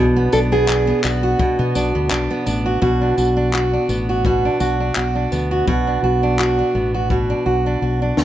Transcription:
0.00 0.27 B1 loud
0.00 1.38 B2 medium
0.00 0.16 B3 medium
0.00 0.32 D4 medium
0.16 0.52 B3 medium
0.32 0.92 B1 medium
0.32 0.68 D4 medium
0.32 0.38 A4 loud
0.32 tambourine medium
0.52 0.87 B3 medium
0.52 1.05 G#4 loud
0.68 1.03 D4 medium
0.68 clap loud
0.87 1.58 B3 medium
1.03 1.34 B1 medium
1.03 1.75 D4 medium
1.03 2.08 F#4 medium
1.03 clap loud
1.03 tambourine medium
1.23 2.65 F#4 medium
1.39 2.80 B2 medium
1.39 kick loud
1.59 1.72 B2 medium
1.59 1.95 B3 medium
1.75 1.91 B1 medium
1.75 2.10 D4 medium
1.75 tambourine medium
1.95 2.08 D2 medium
1.95 2.30 B3 medium
2.10 2.27 B1 loud
2.10 2.46 D4 medium
2.10 clap loud
2.30 3.89 B3 medium
2.46 2.76 A1 medium
2.46 3.01 D4 medium
2.46 tambourine medium
2.66 2.82 F#4 medium
2.82 3.11 B1 medium
2.82 4.24 B2 medium
2.82 3.17 F#4 medium
2.82 kick loud
3.01 3.35 D4 medium
3.17 3.76 B1 medium
3.17 3.53 F#4 medium
3.17 tambourine medium
3.37 3.72 D4 medium
3.53 4.09 F#4 medium
3.53 clap loud
3.73 4.44 D4 medium
3.89 4.47 A1 medium
3.89 5.31 B3 medium
3.89 tambourine medium
4.09 4.26 F#4 medium
4.25 5.66 B2 medium
4.25 4.60 F#4 medium
4.25 kick loud
4.45 4.79 D4 medium
4.60 4.90 B1 medium
4.60 4.96 F#4 medium
4.60 tambourine medium
4.80 5.14 D4 medium
4.96 5.25 B1 medium
4.96 5.51 F#4 medium
4.96 clap loud
5.15 5.86 D4 soft
5.32 5.61 D2 medium
5.32 6.74 B3 medium
5.32 tambourine medium
5.51 5.68 F#4 medium
5.67 5.97 B1 medium
5.67 7.09 B2 medium
5.67 6.03 F#4 medium
5.67 kick loud
5.87 6.22 D4 medium
6.03 6.61 B1 medium
6.03 6.39 F#4 medium
6.23 6.57 D4 medium
6.39 6.94 F#4 medium
6.39 clap medium
6.59 7.29 D4 medium
6.75 7.33 A1 medium
6.75 8.16 B3 medium
6.94 7.11 F#4 medium
7.10 8.24 B2 medium
7.10 7.45 F#4 medium
7.10 kick medium
7.30 7.65 D4 medium
7.46 7.75 B1 medium
7.46 7.82 F#4 medium
7.66 8.01 D4 medium
7.82 8.11 B1 medium
7.82 8.24 F#4 medium
8.02 8.24 D4 soft
8.17 8.24 D2 medium
8.17 8.24 B3 soft
8.17 snare medium

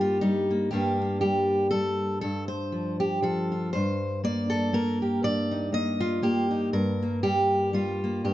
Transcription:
0.00 0.71 G2 medium
0.00 0.21 G3 medium
0.00 0.49 A#3 soft
0.00 0.21 F4 medium
0.00 0.51 G4 medium
0.21 0.70 G3 medium
0.21 0.72 D#4 medium
0.51 0.72 A#3 soft
0.71 2.21 G2 medium
0.71 1.21 G3 soft
0.71 1.00 A#3 soft
0.71 3.51 D4 soft
0.71 1.20 G4 medium
1.02 2.23 A#3 soft
1.21 1.71 G3 medium
1.21 1.70 G4 medium
1.71 2.20 G3 medium
1.71 2.20 A4 medium
2.21 3.73 G2 medium
2.21 2.48 A4 medium
2.48 2.99 C5 medium
2.72 3.21 F3 medium
3.00 3.22 G4 medium
3.22 3.73 F3 medium
3.22 3.72 A4 medium
3.52 3.70 F4 soft
3.73 5.22 G2 medium
3.73 4.23 C5 medium
4.24 4.73 A#3 medium
4.24 4.74 D5 loud
4.50 5.00 A4 medium
4.73 5.72 A#3 medium
4.73 5.24 A#4 medium
5.02 6.03 G4 soft
5.23 6.73 G2 medium
5.23 5.73 D5 loud
5.51 6.00 D#4 soft
5.72 6.22 A#3 medium
5.72 6.23 D#5 loud
6.00 6.50 F4 medium
6.22 7.03 A#3 medium
6.22 6.73 G4 medium
6.51 6.70 D#4 soft
6.73 8.24 G2 medium
6.73 7.23 A#4 medium
7.03 8.03 A#3 soft
7.23 7.73 G3 medium
7.23 8.23 G4 loud
7.73 8.34 G3 medium
7.73 8.24 F4 medium
8.04 8.34 A#3 soft
8.24 8.34 G2 medium
8.24 8.34 G4 medium

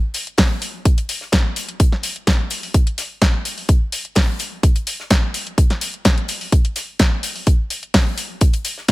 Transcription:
0.14 closed hi-hat medium
0.14 open hi-hat loud
0.27 closed hi-hat soft
0.38 kick loud
0.38 snare loud
0.38 closed hi-hat medium
0.38 open hi-hat medium
0.62 closed hi-hat medium
0.62 open hi-hat loud
0.85 kick loud
0.85 closed hi-hat medium
0.98 closed hi-hat soft
0.98 closed hi-hat medium
1.09 closed hi-hat medium
1.09 open hi-hat loud
1.21 snare soft
1.32 kick loud
1.32 snare loud
1.32 closed hi-hat medium
1.56 closed hi-hat medium
1.56 open hi-hat loud
1.69 closed hi-hat medium
1.80 kick loud
1.80 closed hi-hat medium
1.92 snare soft
2.03 closed hi-hat medium
2.03 open hi-hat loud
2.16 closed hi-hat soft
2.27 kick loud
2.27 snare loud
2.27 closed hi-hat medium
2.50 closed hi-hat medium
2.50 open hi-hat loud
2.63 open hi-hat medium
2.74 kick loud
2.74 closed hi-hat medium
2.87 closed hi-hat medium
2.98 snare soft
2.98 closed hi-hat medium
2.98 open hi-hat loud
3.22 kick loud
3.22 snare loud
3.22 closed hi-hat medium
3.45 closed hi-hat medium
3.45 open hi-hat loud
3.58 open hi-hat medium
3.69 kick loud
3.69 closed hi-hat medium
3.92 closed hi-hat medium
3.92 open hi-hat loud
4.05 closed hi-hat soft
4.15 kick loud
4.15 snare loud
4.15 closed hi-hat medium
4.15 open hi-hat medium
4.39 closed hi-hat medium
4.39 open hi-hat loud
4.63 kick loud
4.63 closed hi-hat medium
4.75 closed hi-hat soft
4.87 closed hi-hat medium
4.87 open hi-hat loud
5.00 snare soft
5.10 kick loud
5.10 snare loud
5.10 closed hi-hat medium
5.34 closed hi-hat medium
5.34 open hi-hat loud
5.47 closed hi-hat soft
5.58 kick loud
5.58 closed hi-hat medium
5.70 snare soft
5.70 closed hi-hat soft
5.81 closed hi-hat medium
5.81 open hi-hat loud
5.94 closed hi-hat soft
6.05 kick loud
6.05 snare loud
6.05 closed hi-hat medium
6.18 closed hi-hat soft
6.28 closed hi-hat medium
6.28 open hi-hat loud
6.41 open hi-hat medium
6.52 kick loud
6.52 closed hi-hat medium
6.65 closed hi-hat medium
6.76 snare soft
6.76 closed hi-hat medium
6.76 open hi-hat loud
6.99 kick loud
6.99 snare loud
6.99 closed hi-hat medium
7.23 closed hi-hat medium
7.23 open hi-hat loud
7.36 open hi-hat medium
7.47 kick loud
7.47 closed hi-hat medium
7.70 closed hi-hat medium
7.70 open hi-hat loud
7.83 closed hi-hat soft
7.94 kick loud
7.94 snare loud
7.94 closed hi-hat medium
7.94 open hi-hat medium
8.17 closed hi-hat medium
8.17 open hi-hat loud
8.41 kick loud
8.41 closed hi-hat medium
8.53 closed hi-hat soft
8.53 closed hi-hat medium
8.65 closed hi-hat medium
8.65 open hi-hat loud
8.78 snare soft
8.88 kick loud
8.88 snare loud
8.88 closed hi-hat medium

